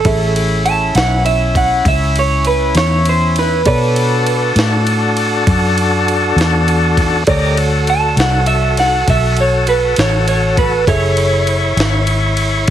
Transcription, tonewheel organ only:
0.05 3.62 C#4 medium
0.05 3.62 E4 medium
3.66 7.24 D4 medium
3.66 7.24 F#4 medium
3.66 7.23 A4 medium
7.29 7.58 G4 medium
7.29 7.58 A#4 medium
7.29 7.58 D5 medium
7.29 7.58 D#5 medium
7.57 10.85 F#4 medium
7.57 10.85 A4 medium
10.88 12.70 E4 medium
10.88 12.70 C#5 medium

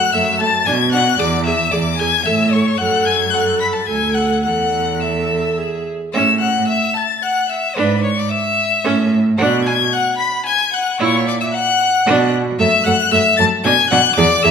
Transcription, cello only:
0.14 0.61 F#2 medium
0.67 1.14 B2 medium
1.20 1.67 E2 loud
1.73 2.20 E2 medium
2.27 2.74 A2 medium
2.80 3.84 F#2 medium
3.89 4.47 D2 medium
4.45 5.94 E2 medium
6.15 6.60 A2 medium
7.77 8.22 G#2 medium
8.85 9.30 A2 medium
9.39 9.84 B2 medium
11.00 11.45 A#2 medium
12.07 12.51 B2 medium
12.60 12.68 F#2 loud
12.86 12.94 F#2 loud
13.13 13.21 F#2 medium
13.39 13.47 F#2 loud
13.65 13.73 B2 loud
13.92 14.00 B2 loud
14.18 14.26 E2 loud
14.45 14.51 E2 loud

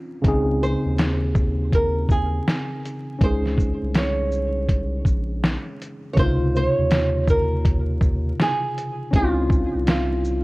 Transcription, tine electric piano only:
0.00 0.20 C4 soft
0.00 0.19 C#4 medium
0.00 0.21 D#4 soft
0.00 0.22 F4 medium
0.22 3.15 C#3 medium
0.22 3.16 C4 medium
0.26 3.18 D#4 medium
0.26 3.19 G#4 medium
3.19 6.13 G#3 medium
3.19 6.12 C#4 medium
3.23 6.14 D#4 soft
3.23 6.15 G#4 medium
6.15 9.09 C3 medium
6.15 9.08 C#3 medium
6.19 9.10 D#4 medium
6.19 9.11 F4 medium
9.11 10.44 C4 medium
9.11 10.44 C#4 medium
9.15 10.44 D#4 medium
9.15 9.24 E4 medium
9.24 10.44 F4 medium

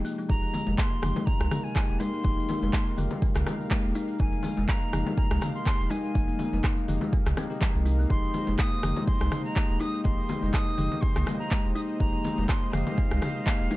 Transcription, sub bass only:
0.30 0.40 F1 loud
0.68 0.76 F1 medium
1.03 1.13 F1 medium
1.40 1.49 C2 medium
1.89 1.98 D#1 medium
2.24 2.35 F1 loud
2.63 2.71 F1 medium
2.98 3.08 F1 medium
3.36 3.44 C2 medium
3.85 3.93 D#1 medium
4.20 4.30 F1 loud
4.58 4.66 F1 medium
4.93 5.04 F1 medium
5.31 5.39 C2 medium
5.80 5.88 D#1 medium
6.15 6.26 F1 loud
6.53 6.61 F1 medium
6.89 6.99 F1 medium
7.26 7.34 C2 medium
7.75 8.06 C2 loud
8.10 8.21 F1 loud
8.48 8.57 F1 medium
8.84 8.94 F1 medium
9.21 9.30 C2 loud
9.70 9.79 D#1 medium
10.05 10.16 F1 loud
10.43 10.51 F1 medium
10.78 10.89 F1 medium
11.16 11.25 C2 medium
11.65 11.74 D#1 medium
12.00 12.11 F1 loud
12.38 12.47 F1 medium
12.74 12.84 F1 medium
13.12 13.20 C2 medium
13.60 13.69 D#1 medium

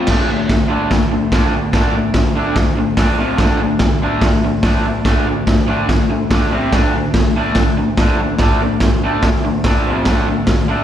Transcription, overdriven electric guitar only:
0.10 0.29 D3 medium
0.10 0.29 A3 medium
0.10 0.29 D4 loud
0.30 0.48 D3 medium
0.30 0.48 A3 medium
0.50 0.67 D3 medium
0.50 0.68 A3 medium
0.68 0.89 D3 medium
0.68 0.89 A3 loud
0.68 0.90 D4 loud
0.91 1.09 D3 medium
0.91 1.10 A3 medium
1.11 1.30 D3 medium
1.11 1.30 A3 medium
1.32 1.51 D3 medium
1.32 1.52 A3 medium
1.32 1.52 D4 loud
1.52 1.71 D3 medium
1.52 1.72 A3 medium
1.73 1.93 D3 medium
1.73 1.93 A3 medium
1.73 1.94 D4 loud
1.94 2.13 D3 medium
1.94 2.13 A3 medium
2.15 2.34 D3 medium
2.15 2.34 A3 medium
2.36 2.55 D3 medium
2.36 2.56 A3 medium
2.36 2.56 D4 medium
2.56 2.75 D3 medium
2.56 2.75 A3 medium
2.78 2.96 D3 medium
2.78 2.96 A3 medium
2.97 3.17 D3 medium
2.97 3.18 A3 medium
2.97 3.18 D4 loud
3.18 3.38 F2 medium
3.18 3.37 C3 medium
3.18 3.38 F3 loud
3.38 3.58 D3 medium
3.38 3.59 A3 medium
3.38 3.59 D4 loud
3.60 3.79 D3 medium
3.60 3.79 A3 medium
3.81 4.00 D3 medium
3.81 4.00 A3 medium
4.02 4.21 D3 medium
4.02 4.22 A3 medium
4.02 4.22 D4 loud
4.23 4.41 D3 medium
4.23 4.42 A3 medium
4.44 4.62 D3 medium
4.44 4.62 A3 medium
4.64 4.84 D3 medium
4.64 4.84 A3 medium
4.64 4.84 D4 loud
4.85 5.04 D3 medium
4.85 5.04 A3 medium
5.05 5.25 D3 medium
5.05 5.26 A3 loud
5.05 5.26 D4 loud
5.27 5.46 D3 medium
5.27 5.46 A3 medium
5.49 5.66 D3 medium
5.49 5.67 A3 medium
5.67 5.87 D3 medium
5.67 5.88 A3 medium
5.67 5.88 D4 loud
5.89 6.08 D3 medium
5.89 6.08 A3 loud
6.09 6.28 D3 medium
6.09 6.29 A3 medium
6.30 6.50 D3 medium
6.30 6.51 A3 medium
6.30 6.51 D4 medium
6.50 6.71 C3 medium
6.50 6.71 G3 medium
6.50 6.72 C4 medium
6.72 6.92 D3 medium
6.72 6.92 A3 medium
6.72 6.93 D4 loud
6.94 7.12 D3 medium
6.94 7.12 A3 medium
7.14 7.33 D3 medium
7.14 7.33 A3 medium
7.36 7.55 D3 medium
7.36 7.55 A3 medium
7.36 7.56 D4 loud
7.57 7.75 D3 medium
7.57 7.75 A3 medium
7.77 7.96 D3 medium
7.77 7.96 A3 medium
7.99 8.18 D3 medium
7.99 8.18 A3 medium
7.99 8.18 D4 loud
8.19 8.38 D3 medium
8.19 8.38 A3 medium
8.40 8.59 D3 medium
8.40 8.59 A3 loud
8.40 8.60 D4 loud
8.62 8.80 D3 medium
8.62 8.80 A3 medium
8.83 9.01 D3 medium
8.83 9.01 A3 medium
9.04 9.22 D3 medium
9.04 9.23 A3 medium
9.04 9.23 D4 medium
9.26 9.43 D3 medium
9.26 9.43 A3 medium
9.44 9.63 D3 medium
9.44 9.63 A3 medium
9.66 9.85 D3 medium
9.66 9.85 A3 medium
9.66 9.85 D4 loud
9.86 10.06 F2 medium
9.86 10.05 C3 medium
9.86 10.06 F3 medium
10.06 10.26 D3 loud
10.06 10.26 A3 loud
10.06 10.27 D4 loud
10.28 10.46 D3 medium
10.28 10.47 A3 medium
10.48 10.67 D3 medium
10.48 10.67 A3 medium
10.68 10.84 D3 medium
10.68 10.84 A3 medium
10.68 10.84 D4 loud

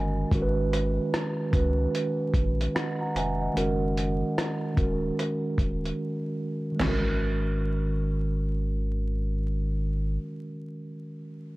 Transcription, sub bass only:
0.00 0.25 G1 medium
0.32 0.99 G#1 loud
1.53 1.87 C#2 loud
2.34 2.68 A#1 medium
3.15 3.49 F1 medium
3.56 4.23 F#1 loud
4.77 5.11 D#1 loud
5.58 5.92 D#1 medium
6.80 10.18 G#1 medium

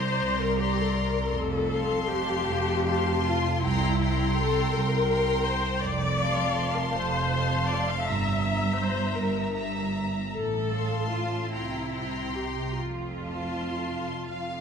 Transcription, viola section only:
0.00 0.40 C5 medium
0.41 0.59 A#4 medium
0.57 0.77 G4 medium
0.77 0.96 A4 medium
0.96 1.33 A#4 medium
1.33 2.10 A4 medium
2.09 3.25 G4 medium
3.25 3.64 F4 medium
3.64 4.38 E4 medium
4.39 4.74 A4 medium
4.75 5.47 A#4 medium
5.46 5.83 C5 medium
5.83 6.76 D5 loud
6.76 6.94 A#4 medium
6.95 7.67 C5 medium
7.69 7.87 D5 medium
7.89 8.06 F5 medium
8.05 8.77 E5 medium
8.78 9.15 C5 medium
9.16 9.54 A#4 medium
10.34 11.08 A4 medium
11.12 11.52 F4 medium
11.53 12.36 E4 medium
12.35 12.79 G4 medium
12.78 14.61 F4 medium

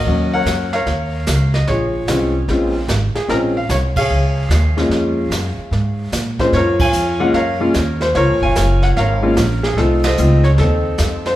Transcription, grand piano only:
0.00 0.33 A#4 medium
0.00 0.34 D#5 medium
0.07 0.68 F#3 medium
0.07 0.68 A#3 medium
0.07 0.68 C#4 medium
0.07 0.68 F#4 medium
0.34 0.73 A#4 medium
0.34 0.73 C#5 medium
0.34 0.75 F#5 loud
0.73 1.51 A#4 medium
0.73 1.51 C#5 medium
0.73 1.56 F5 loud
1.54 1.67 D#5 medium
1.68 2.09 F4 medium
1.68 2.46 G#4 medium
1.68 2.45 C#5 medium
2.09 2.32 G#3 medium
2.09 2.32 C4 medium
2.09 2.33 C#4 medium
2.09 2.33 F4 medium
2.49 2.73 G#3 medium
2.49 2.73 C4 medium
2.49 2.73 C#4 medium
2.49 2.73 F4 medium
3.16 3.30 G#4 medium
3.28 3.53 G#3 medium
3.28 3.53 C4 medium
3.28 3.53 C#4 medium
3.28 3.53 F4 medium
3.28 3.36 A#4 medium
3.57 3.70 F5 medium
3.71 3.76 C#5 medium
3.97 6.10 G#4 medium
3.97 6.10 C#5 medium
3.97 6.09 F5 loud
4.77 5.29 G#3 medium
4.77 5.29 A#3 medium
4.77 5.29 C#4 medium
4.77 5.29 F4 medium
6.40 6.52 G#3 medium
6.40 6.52 A#3 medium
6.40 6.53 C#4 medium
6.40 6.53 F4 medium
6.40 6.54 C5 medium
6.54 7.19 F4 medium
6.54 7.32 A#4 medium
6.54 6.81 C#5 loud
6.81 7.35 C#5 medium
6.81 7.33 F5 medium
6.81 7.22 G#5 loud
7.20 7.33 G#3 medium
7.20 7.33 A#3 medium
7.20 7.33 C#4 medium
7.20 7.33 F4 medium
7.20 7.33 F#5 medium
7.34 8.12 A#4 medium
7.34 8.12 C#5 medium
7.34 7.72 F5 loud
7.60 7.73 G#3 medium
7.60 7.73 A#3 medium
7.60 7.73 C#4 medium
7.60 7.74 F4 medium
8.02 8.16 C5 medium
8.16 8.93 F4 medium
8.16 8.93 A#4 medium
8.16 8.42 C#5 loud
8.43 8.97 C#5 medium
8.43 8.95 F5 medium
8.43 8.84 G#5 loud
8.83 8.88 F#5 medium
8.97 9.75 A#4 medium
8.97 9.75 C#5 medium
8.97 9.34 F5 loud
9.22 9.35 G#3 medium
9.22 9.35 A#3 medium
9.22 9.36 C#4 medium
9.22 9.36 F4 medium
9.63 9.77 G#4 medium
9.77 10.01 A3 medium
9.77 10.02 C4 medium
9.77 10.02 D#4 medium
9.77 10.02 F4 medium
9.77 10.04 A4 medium
10.04 10.58 A4 medium
10.04 10.82 C5 medium
10.04 10.46 D#5 medium
10.18 10.42 A3 medium
10.18 10.43 C4 medium
10.18 10.43 D#4 medium
10.18 10.43 F4 medium
10.44 10.49 C#5 medium
10.59 11.36 C4 medium
10.59 11.36 D#4 medium
10.59 11.28 A4 medium
11.27 11.36 C5 medium

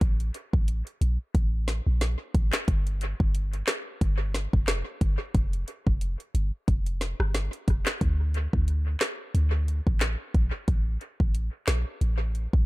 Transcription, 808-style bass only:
0.01 0.31 A1 loud
0.53 0.83 A1 medium
1.01 1.18 A#1 medium
1.35 1.81 A1 loud
1.87 2.16 A#1 loud
2.35 2.51 A1 medium
2.68 3.14 G1 loud
3.20 3.63 G1 loud
4.01 4.47 G1 loud
4.53 4.83 F1 medium
5.01 5.18 G1 loud
5.35 5.64 F1 loud
5.87 6.16 F1 medium
6.35 6.51 G1 loud
6.68 7.14 F1 loud
7.20 7.49 G1 medium
7.68 7.84 F1 medium
8.01 8.47 D2 loud
8.53 8.96 D2 loud
9.35 9.81 D2 loud
9.87 10.16 A1 medium
10.34 10.51 A#1 medium
10.68 10.98 A1 loud
11.20 11.50 A1 medium
11.68 11.85 A#1 medium
12.01 12.47 A1 loud
12.53 12.66 A#1 medium

